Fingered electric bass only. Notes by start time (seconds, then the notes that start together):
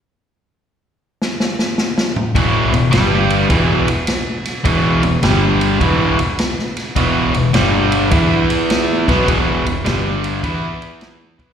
2.35 E1
2.73 E1
2.92 G1
3.49 E1
4.65 E1
5.03 E1
5.22 G1
5.81 E1
6.96 E1
7.35 E1
7.54 G1
8.11 E2
9.08 B1
9.28 E1
9.67 E1
9.85 G1
10.43 E2
11.39 B1